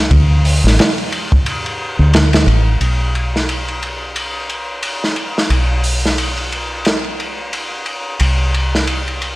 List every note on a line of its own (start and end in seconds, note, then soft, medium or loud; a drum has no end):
0.11 0.61 D2 loud
0.11 kick loud
0.11 ride medium
0.45 open hi-hat medium
0.64 0.77 A1 medium
0.64 snare medium
0.79 snare loud
0.79 ride medium
0.98 ride soft
1.12 ride medium
1.32 kick loud
1.46 ride medium
1.66 ride soft
1.99 2.45 D2 medium
2.14 snare loud
2.14 ride medium
2.33 snare loud
2.33 ride medium
2.47 2.77 A1 medium
2.47 ride medium
2.80 5.48 B1 medium
2.80 ride medium
3.15 ride medium
3.36 snare soft
3.49 ride medium
3.68 ride soft
3.83 ride medium
4.16 ride medium
4.50 ride medium
4.83 ride medium
5.04 snare soft
5.16 ride medium
5.38 snare soft
5.50 8.17 B1 medium
5.50 ride medium
5.84 open hi-hat medium
6.05 snare soft
6.18 ride medium
6.37 ride soft
6.52 ride medium
6.85 snare medium
6.85 ride medium
7.04 ride soft
7.20 ride medium
7.53 ride medium
7.86 ride medium
8.20 9.36 C2 medium
8.20 ride medium
8.54 ride medium
8.75 snare soft
8.87 ride medium
9.08 ride soft
9.22 ride medium